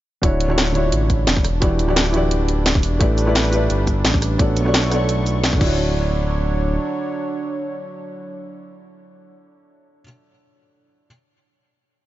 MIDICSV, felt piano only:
0, 0, Header, 1, 2, 480
1, 0, Start_track
1, 0, Key_signature, 2, "major"
1, 0, Tempo, 346821
1, 321, Time_signature, 4, 2, 24, 8
1, 16694, End_track
2, 0, Start_track
2, 0, Title_t, "Felt piano"
2, 0, Program_c, 0, 0
2, 299, Note_on_c, 0, 50, 79
2, 310, Note_on_c, 0, 62, 76
2, 322, Note_on_c, 0, 64, 74
2, 330, Note_on_c, 0, 66, 75
2, 340, Note_on_c, 0, 73, 87
2, 572, Control_c, 0, 64, 127
2, 648, Note_off_c, 0, 50, 0
2, 654, Note_off_c, 0, 62, 0
2, 660, Note_off_c, 0, 64, 0
2, 664, Note_off_c, 0, 66, 0
2, 669, Note_off_c, 0, 73, 0
2, 669, Note_on_c, 0, 50, 78
2, 679, Note_on_c, 0, 62, 72
2, 689, Note_on_c, 0, 64, 71
2, 701, Note_on_c, 0, 66, 74
2, 710, Note_on_c, 0, 73, 86
2, 978, Note_off_c, 0, 50, 0
2, 997, Note_off_c, 0, 62, 0
2, 999, Note_on_c, 0, 50, 75
2, 1014, Note_off_c, 0, 64, 0
2, 1018, Note_on_c, 0, 62, 72
2, 1020, Note_off_c, 0, 66, 0
2, 1024, Note_off_c, 0, 73, 0
2, 1039, Note_on_c, 0, 64, 72
2, 1058, Note_on_c, 0, 66, 72
2, 1079, Note_on_c, 0, 73, 85
2, 1967, Note_off_c, 0, 50, 0
2, 1976, Note_off_c, 0, 62, 0
2, 1987, Note_off_c, 0, 64, 0
2, 1997, Note_off_c, 0, 66, 0
2, 2007, Note_off_c, 0, 73, 0
2, 2022, Control_c, 0, 64, 0
2, 2221, Note_on_c, 0, 52, 81
2, 2231, Note_on_c, 0, 64, 76
2, 2243, Note_on_c, 0, 66, 75
2, 2250, Control_c, 0, 64, 127
2, 2251, Note_on_c, 0, 67, 77
2, 2262, Note_on_c, 0, 74, 89
2, 2569, Note_off_c, 0, 52, 0
2, 2575, Note_off_c, 0, 64, 0
2, 2580, Note_off_c, 0, 66, 0
2, 2585, Note_off_c, 0, 67, 0
2, 2590, Note_off_c, 0, 74, 0
2, 2592, Note_on_c, 0, 52, 75
2, 2601, Note_on_c, 0, 64, 72
2, 2613, Note_on_c, 0, 66, 72
2, 2621, Note_on_c, 0, 67, 70
2, 2632, Note_on_c, 0, 74, 84
2, 2902, Note_off_c, 0, 52, 0
2, 2923, Note_off_c, 0, 64, 0
2, 2923, Note_on_c, 0, 52, 92
2, 2936, Note_off_c, 0, 66, 0
2, 2940, Note_off_c, 0, 67, 0
2, 2943, Note_on_c, 0, 64, 83
2, 2945, Note_off_c, 0, 74, 0
2, 2964, Note_on_c, 0, 66, 84
2, 2984, Note_on_c, 0, 67, 85
2, 3005, Note_on_c, 0, 74, 102
2, 4116, Note_off_c, 0, 52, 0
2, 4126, Note_off_c, 0, 64, 0
2, 4136, Note_off_c, 0, 66, 0
2, 4141, Note_off_c, 0, 67, 0
2, 4142, Note_on_c, 0, 57, 86
2, 4151, Note_on_c, 0, 64, 75
2, 4157, Note_off_c, 0, 74, 0
2, 4162, Note_on_c, 0, 67, 75
2, 4172, Note_on_c, 0, 71, 78
2, 4179, Control_c, 0, 64, 0
2, 4182, Note_on_c, 0, 74, 91
2, 4457, Control_c, 0, 64, 127
2, 4487, Note_off_c, 0, 57, 0
2, 4495, Note_off_c, 0, 64, 0
2, 4500, Note_off_c, 0, 67, 0
2, 4505, Note_off_c, 0, 71, 0
2, 4508, Note_on_c, 0, 57, 80
2, 4510, Note_off_c, 0, 74, 0
2, 4518, Note_on_c, 0, 64, 74
2, 4528, Note_on_c, 0, 67, 74
2, 4539, Note_on_c, 0, 71, 73
2, 4549, Note_on_c, 0, 74, 88
2, 4821, Note_off_c, 0, 57, 0
2, 4842, Note_off_c, 0, 64, 0
2, 4842, Note_on_c, 0, 57, 77
2, 4854, Note_off_c, 0, 67, 0
2, 4859, Note_off_c, 0, 71, 0
2, 4863, Note_on_c, 0, 64, 70
2, 4864, Note_off_c, 0, 74, 0
2, 4884, Note_on_c, 0, 67, 71
2, 4903, Note_on_c, 0, 71, 70
2, 4923, Note_on_c, 0, 74, 89
2, 6035, Note_off_c, 0, 57, 0
2, 6046, Note_off_c, 0, 64, 0
2, 6056, Note_off_c, 0, 67, 0
2, 6063, Note_on_c, 0, 59, 83
2, 6066, Note_off_c, 0, 71, 0
2, 6074, Note_on_c, 0, 66, 75
2, 6076, Note_off_c, 0, 74, 0
2, 6083, Note_on_c, 0, 69, 75
2, 6093, Note_on_c, 0, 73, 76
2, 6099, Control_c, 0, 64, 0
2, 6103, Note_on_c, 0, 74, 90
2, 6329, Control_c, 0, 64, 127
2, 6410, Note_off_c, 0, 59, 0
2, 6416, Note_off_c, 0, 66, 0
2, 6421, Note_off_c, 0, 69, 0
2, 6425, Note_off_c, 0, 73, 0
2, 6431, Note_off_c, 0, 74, 0
2, 6433, Note_on_c, 0, 59, 78
2, 6443, Note_on_c, 0, 66, 69
2, 6454, Note_on_c, 0, 69, 70
2, 6464, Note_on_c, 0, 73, 71
2, 6476, Note_on_c, 0, 74, 87
2, 6747, Note_off_c, 0, 59, 0
2, 6766, Note_off_c, 0, 66, 0
2, 6767, Note_on_c, 0, 59, 95
2, 6777, Note_off_c, 0, 69, 0
2, 6782, Note_off_c, 0, 73, 0
2, 6787, Note_off_c, 0, 74, 0
2, 6787, Note_on_c, 0, 66, 81
2, 6808, Note_on_c, 0, 69, 81
2, 6828, Note_on_c, 0, 73, 86
2, 6847, Note_on_c, 0, 74, 97
2, 7705, Note_on_c, 0, 50, 83
2, 7736, Note_on_c, 0, 62, 76
2, 7744, Note_off_c, 0, 59, 0
2, 7754, Note_off_c, 0, 66, 0
2, 7765, Note_off_c, 0, 69, 0
2, 7765, Note_on_c, 0, 64, 79
2, 7774, Note_off_c, 0, 73, 0
2, 7778, Control_c, 0, 64, 0
2, 7784, Note_off_c, 0, 74, 0
2, 7796, Note_on_c, 0, 66, 78
2, 7825, Note_on_c, 0, 73, 92
2, 7888, Control_c, 0, 64, 127
2, 8017, Control_c, 0, 64, 0
2, 8248, Control_c, 0, 64, 127
2, 13834, Note_off_c, 0, 50, 0
2, 13849, Note_off_c, 0, 62, 0
2, 13864, Note_off_c, 0, 64, 0
2, 13879, Note_off_c, 0, 66, 0
2, 13894, Note_off_c, 0, 73, 0
2, 15318, Control_c, 0, 64, 0
2, 16694, End_track
0, 0, End_of_file